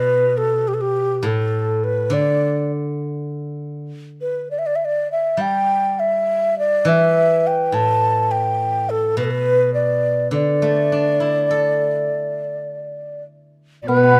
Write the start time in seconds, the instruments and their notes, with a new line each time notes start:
Already playing: guzheng B2, xiao B4
0.37 xiao A4
0.68 xiao G4
0.74 xiao A4
0.81 xiao G4
1.23 guzheng A2, xiao A4
1.84 xiao B4
2.10 guzheng D3, xiao D5
4.21 xiao B4
4.51 xiao D5
4.59 xiao E5
4.66 xiao D5
4.76 xiao E5
4.85 xiao D5
5.12 xiao E5
5.37 guzheng G3
5.41 xiao G5
5.99 xiao E5
6.59 xiao D5
6.85 guzheng E3, xiao E5
7.47 xiao G5
7.72 guzheng A2, xiao A5
8.31 xiao G5
8.90 xiao A4
9.17 guzheng B2, xiao B4
9.24 xiao A4
9.31 xiao B4
9.74 xiao D5
10.31 guzheng D3, xiao D5
10.62 guzheng A3
10.92 guzheng D4
11.20 guzheng E4
11.51 guzheng A4
13.82 dizi D5
13.87 cello B2, hammered dulcimer B3, dizi B4, xiao B4
13.96 hammered dulcimer B3
14.03 hammered dulcimer B3
14.12 hammered dulcimer B3